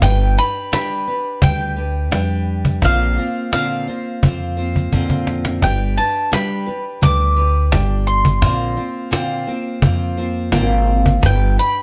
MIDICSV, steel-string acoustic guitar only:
0, 0, Header, 1, 2, 480
1, 0, Start_track
1, 0, Tempo, 700117
1, 21, Time_signature, 4, 2, 24, 8
1, 8108, End_track
2, 0, Start_track
2, 0, Title_t, "Steel-string acoustic guitar"
2, 0, Program_c, 0, 25
2, 19, Note_on_c, 0, 55, 68
2, 20, Note_on_c, 0, 62, 69
2, 24, Note_on_c, 0, 67, 72
2, 28, Note_on_c, 0, 71, 81
2, 250, Note_off_c, 0, 71, 0
2, 258, Note_on_c, 0, 71, 56
2, 259, Note_off_c, 0, 67, 0
2, 260, Note_off_c, 0, 55, 0
2, 260, Note_off_c, 0, 62, 0
2, 267, Note_on_c, 0, 67, 51
2, 268, Note_on_c, 0, 62, 50
2, 492, Note_off_c, 0, 62, 0
2, 493, Note_off_c, 0, 67, 0
2, 493, Note_on_c, 0, 55, 84
2, 496, Note_off_c, 0, 71, 0
2, 500, Note_on_c, 0, 62, 77
2, 501, Note_on_c, 0, 67, 91
2, 504, Note_on_c, 0, 71, 92
2, 730, Note_off_c, 0, 71, 0
2, 737, Note_off_c, 0, 55, 0
2, 738, Note_off_c, 0, 67, 0
2, 738, Note_on_c, 0, 71, 53
2, 740, Note_off_c, 0, 62, 0
2, 746, Note_on_c, 0, 67, 47
2, 749, Note_on_c, 0, 62, 41
2, 975, Note_off_c, 0, 62, 0
2, 977, Note_on_c, 0, 55, 54
2, 979, Note_off_c, 0, 67, 0
2, 979, Note_off_c, 0, 71, 0
2, 984, Note_on_c, 0, 62, 55
2, 987, Note_on_c, 0, 67, 67
2, 990, Note_on_c, 0, 71, 70
2, 1200, Note_off_c, 0, 71, 0
2, 1205, Note_off_c, 0, 67, 0
2, 1209, Note_on_c, 0, 71, 52
2, 1212, Note_off_c, 0, 62, 0
2, 1214, Note_on_c, 0, 67, 46
2, 1219, Note_off_c, 0, 55, 0
2, 1221, Note_on_c, 0, 62, 49
2, 1441, Note_off_c, 0, 62, 0
2, 1444, Note_off_c, 0, 67, 0
2, 1448, Note_on_c, 0, 55, 84
2, 1449, Note_off_c, 0, 71, 0
2, 1449, Note_on_c, 0, 62, 90
2, 1452, Note_on_c, 0, 67, 92
2, 1457, Note_on_c, 0, 71, 101
2, 1933, Note_on_c, 0, 46, 74
2, 1934, Note_off_c, 0, 55, 0
2, 1936, Note_off_c, 0, 67, 0
2, 1939, Note_off_c, 0, 62, 0
2, 1939, Note_off_c, 0, 71, 0
2, 1939, Note_on_c, 0, 50, 71
2, 1940, Note_on_c, 0, 65, 77
2, 1941, Note_on_c, 0, 58, 66
2, 1942, Note_on_c, 0, 60, 73
2, 1944, Note_on_c, 0, 72, 76
2, 2168, Note_off_c, 0, 72, 0
2, 2173, Note_off_c, 0, 65, 0
2, 2177, Note_off_c, 0, 46, 0
2, 2177, Note_on_c, 0, 72, 57
2, 2179, Note_off_c, 0, 60, 0
2, 2180, Note_off_c, 0, 50, 0
2, 2181, Note_off_c, 0, 58, 0
2, 2181, Note_on_c, 0, 65, 53
2, 2187, Note_on_c, 0, 60, 50
2, 2188, Note_on_c, 0, 58, 46
2, 2409, Note_off_c, 0, 60, 0
2, 2410, Note_off_c, 0, 58, 0
2, 2412, Note_off_c, 0, 65, 0
2, 2413, Note_on_c, 0, 46, 78
2, 2416, Note_off_c, 0, 72, 0
2, 2416, Note_on_c, 0, 50, 85
2, 2418, Note_on_c, 0, 60, 84
2, 2419, Note_on_c, 0, 58, 90
2, 2420, Note_on_c, 0, 65, 86
2, 2424, Note_on_c, 0, 72, 92
2, 2649, Note_off_c, 0, 72, 0
2, 2650, Note_off_c, 0, 65, 0
2, 2657, Note_off_c, 0, 46, 0
2, 2657, Note_off_c, 0, 60, 0
2, 2657, Note_on_c, 0, 72, 51
2, 2658, Note_off_c, 0, 50, 0
2, 2659, Note_off_c, 0, 58, 0
2, 2659, Note_on_c, 0, 65, 55
2, 2665, Note_on_c, 0, 60, 43
2, 2667, Note_on_c, 0, 58, 39
2, 2888, Note_off_c, 0, 58, 0
2, 2893, Note_off_c, 0, 60, 0
2, 2895, Note_off_c, 0, 65, 0
2, 2897, Note_on_c, 0, 58, 55
2, 2899, Note_off_c, 0, 72, 0
2, 2901, Note_on_c, 0, 60, 65
2, 2904, Note_on_c, 0, 65, 61
2, 2911, Note_on_c, 0, 72, 64
2, 3124, Note_off_c, 0, 72, 0
2, 3130, Note_off_c, 0, 65, 0
2, 3133, Note_on_c, 0, 72, 66
2, 3134, Note_off_c, 0, 60, 0
2, 3138, Note_off_c, 0, 58, 0
2, 3139, Note_on_c, 0, 65, 62
2, 3142, Note_on_c, 0, 60, 57
2, 3147, Note_on_c, 0, 58, 55
2, 3368, Note_off_c, 0, 60, 0
2, 3370, Note_off_c, 0, 58, 0
2, 3373, Note_off_c, 0, 65, 0
2, 3373, Note_off_c, 0, 72, 0
2, 3374, Note_on_c, 0, 46, 90
2, 3375, Note_on_c, 0, 50, 82
2, 3377, Note_on_c, 0, 60, 100
2, 3378, Note_on_c, 0, 58, 87
2, 3381, Note_on_c, 0, 65, 98
2, 3382, Note_on_c, 0, 72, 94
2, 3850, Note_off_c, 0, 58, 0
2, 3853, Note_on_c, 0, 55, 67
2, 3854, Note_off_c, 0, 60, 0
2, 3855, Note_off_c, 0, 65, 0
2, 3857, Note_off_c, 0, 46, 0
2, 3857, Note_on_c, 0, 62, 63
2, 3858, Note_off_c, 0, 50, 0
2, 3858, Note_on_c, 0, 67, 74
2, 3860, Note_off_c, 0, 72, 0
2, 3862, Note_on_c, 0, 71, 78
2, 4084, Note_off_c, 0, 71, 0
2, 4090, Note_off_c, 0, 67, 0
2, 4092, Note_on_c, 0, 71, 54
2, 4095, Note_off_c, 0, 62, 0
2, 4096, Note_off_c, 0, 55, 0
2, 4098, Note_on_c, 0, 67, 48
2, 4104, Note_on_c, 0, 62, 50
2, 4323, Note_off_c, 0, 62, 0
2, 4327, Note_off_c, 0, 67, 0
2, 4330, Note_on_c, 0, 55, 89
2, 4331, Note_off_c, 0, 71, 0
2, 4332, Note_on_c, 0, 62, 81
2, 4335, Note_on_c, 0, 67, 83
2, 4339, Note_on_c, 0, 71, 91
2, 4560, Note_off_c, 0, 71, 0
2, 4569, Note_off_c, 0, 67, 0
2, 4569, Note_on_c, 0, 71, 53
2, 4575, Note_off_c, 0, 55, 0
2, 4576, Note_off_c, 0, 62, 0
2, 4577, Note_on_c, 0, 67, 47
2, 4585, Note_on_c, 0, 62, 42
2, 4805, Note_off_c, 0, 62, 0
2, 4809, Note_off_c, 0, 67, 0
2, 4809, Note_on_c, 0, 55, 58
2, 4813, Note_on_c, 0, 62, 60
2, 4814, Note_off_c, 0, 71, 0
2, 4817, Note_on_c, 0, 67, 62
2, 4822, Note_on_c, 0, 71, 61
2, 5040, Note_off_c, 0, 71, 0
2, 5046, Note_off_c, 0, 67, 0
2, 5049, Note_on_c, 0, 71, 58
2, 5052, Note_off_c, 0, 62, 0
2, 5054, Note_off_c, 0, 55, 0
2, 5055, Note_on_c, 0, 67, 53
2, 5060, Note_on_c, 0, 62, 47
2, 5283, Note_off_c, 0, 62, 0
2, 5285, Note_off_c, 0, 67, 0
2, 5288, Note_on_c, 0, 55, 81
2, 5291, Note_on_c, 0, 62, 93
2, 5293, Note_on_c, 0, 67, 94
2, 5294, Note_off_c, 0, 71, 0
2, 5771, Note_on_c, 0, 46, 74
2, 5772, Note_off_c, 0, 55, 0
2, 5775, Note_off_c, 0, 62, 0
2, 5775, Note_on_c, 0, 50, 62
2, 5775, Note_on_c, 0, 58, 75
2, 5776, Note_off_c, 0, 67, 0
2, 5778, Note_on_c, 0, 60, 81
2, 5779, Note_on_c, 0, 72, 86
2, 5782, Note_on_c, 0, 65, 78
2, 6003, Note_off_c, 0, 72, 0
2, 6006, Note_off_c, 0, 65, 0
2, 6011, Note_off_c, 0, 60, 0
2, 6011, Note_on_c, 0, 72, 58
2, 6014, Note_off_c, 0, 58, 0
2, 6014, Note_on_c, 0, 65, 60
2, 6015, Note_off_c, 0, 46, 0
2, 6017, Note_off_c, 0, 50, 0
2, 6019, Note_on_c, 0, 60, 45
2, 6022, Note_on_c, 0, 58, 46
2, 6244, Note_off_c, 0, 58, 0
2, 6244, Note_on_c, 0, 46, 92
2, 6245, Note_off_c, 0, 65, 0
2, 6245, Note_off_c, 0, 72, 0
2, 6246, Note_off_c, 0, 60, 0
2, 6246, Note_on_c, 0, 50, 96
2, 6252, Note_on_c, 0, 58, 98
2, 6253, Note_on_c, 0, 65, 105
2, 6253, Note_on_c, 0, 72, 110
2, 6255, Note_on_c, 0, 60, 94
2, 6486, Note_off_c, 0, 72, 0
2, 6488, Note_off_c, 0, 65, 0
2, 6491, Note_off_c, 0, 46, 0
2, 6492, Note_off_c, 0, 50, 0
2, 6492, Note_off_c, 0, 60, 0
2, 6494, Note_on_c, 0, 72, 64
2, 6495, Note_off_c, 0, 58, 0
2, 6497, Note_on_c, 0, 65, 52
2, 6500, Note_on_c, 0, 60, 53
2, 6505, Note_on_c, 0, 58, 51
2, 6722, Note_off_c, 0, 58, 0
2, 6729, Note_off_c, 0, 60, 0
2, 6730, Note_on_c, 0, 58, 60
2, 6733, Note_off_c, 0, 65, 0
2, 6736, Note_off_c, 0, 72, 0
2, 6737, Note_on_c, 0, 60, 66
2, 6741, Note_on_c, 0, 65, 72
2, 6746, Note_on_c, 0, 72, 75
2, 6966, Note_off_c, 0, 72, 0
2, 6972, Note_off_c, 0, 60, 0
2, 6972, Note_off_c, 0, 65, 0
2, 6974, Note_off_c, 0, 58, 0
2, 6974, Note_on_c, 0, 72, 65
2, 6980, Note_on_c, 0, 65, 63
2, 6981, Note_on_c, 0, 60, 57
2, 6988, Note_on_c, 0, 58, 50
2, 7208, Note_off_c, 0, 58, 0
2, 7209, Note_off_c, 0, 60, 0
2, 7209, Note_off_c, 0, 65, 0
2, 7213, Note_off_c, 0, 72, 0
2, 7213, Note_on_c, 0, 46, 91
2, 7215, Note_on_c, 0, 50, 103
2, 7216, Note_on_c, 0, 58, 100
2, 7217, Note_on_c, 0, 60, 98
2, 7218, Note_on_c, 0, 65, 99
2, 7221, Note_on_c, 0, 72, 105
2, 7682, Note_off_c, 0, 58, 0
2, 7685, Note_on_c, 0, 55, 69
2, 7690, Note_off_c, 0, 60, 0
2, 7692, Note_off_c, 0, 72, 0
2, 7692, Note_on_c, 0, 62, 77
2, 7693, Note_off_c, 0, 65, 0
2, 7695, Note_off_c, 0, 46, 0
2, 7695, Note_on_c, 0, 71, 89
2, 7696, Note_off_c, 0, 50, 0
2, 7696, Note_on_c, 0, 67, 71
2, 7929, Note_off_c, 0, 71, 0
2, 7931, Note_off_c, 0, 55, 0
2, 7934, Note_off_c, 0, 62, 0
2, 7936, Note_off_c, 0, 67, 0
2, 7937, Note_on_c, 0, 71, 53
2, 7945, Note_on_c, 0, 67, 52
2, 7950, Note_on_c, 0, 62, 47
2, 8108, Note_off_c, 0, 62, 0
2, 8108, Note_off_c, 0, 67, 0
2, 8108, Note_off_c, 0, 71, 0
2, 8108, End_track
0, 0, End_of_file